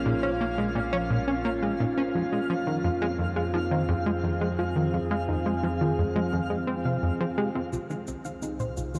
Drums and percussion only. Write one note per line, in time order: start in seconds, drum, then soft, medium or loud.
7.73 cabasa medium
7.90 cabasa soft
8.07 cabasa medium
8.25 cabasa soft
8.43 cabasa medium
8.60 cabasa soft
8.77 cabasa medium
8.95 cabasa soft